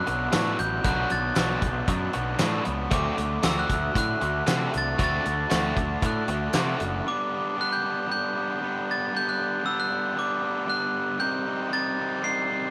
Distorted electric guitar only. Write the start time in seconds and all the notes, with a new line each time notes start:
Already playing: F#3
0.07 B3 D4 F#4
0.32 F#3 B3 D4 F#4
0.84 F#3 B3 D4 F#4
1.10 B3 D4 F#4
1.35 F#3 B3 D4 F#4
1.62 B3 D4 F#4
1.86 F#3 B3 D4 F#4
2.13 B3 D4 F#4
2.40 F#3 B3 D4 F#4
2.92 A3 D4 F#4
3.18 D4 F#4
3.43 A3 D4 F#4
3.69 D4 F#4
3.94 A3 D4 F#4
4.21 D4 F#4
4.46 A3 D4 F#4
4.99 A3 D4 F#4
5.24 D4 F#4
5.51 A3 D4 F#4
5.77 D4 F#4
6.03 A3 D4 F#4
6.29 D4 F#4
6.54 A3 D4 F#4
7.06 G3 B3 D4
7.32 B3 D4
7.57 G3 B3 D4
7.83 B3 D4
8.08 G3 B3 D4
8.35 B3 D4
8.61 G3 B3 D4
9.12 G3 B3 D4
9.38 B3 D4
9.64 G3 B3 D4
9.90 B3 D4
10.16 G3 B3 D4
10.41 B3 D4
10.66 G3 B3 D4
11.19 G3 C4 D#4
11.45 C4 D#4
11.70 G3 C4 D#4
11.96 C4 D#4
12.23 G3 C4 D#4
12.48 C4 D#4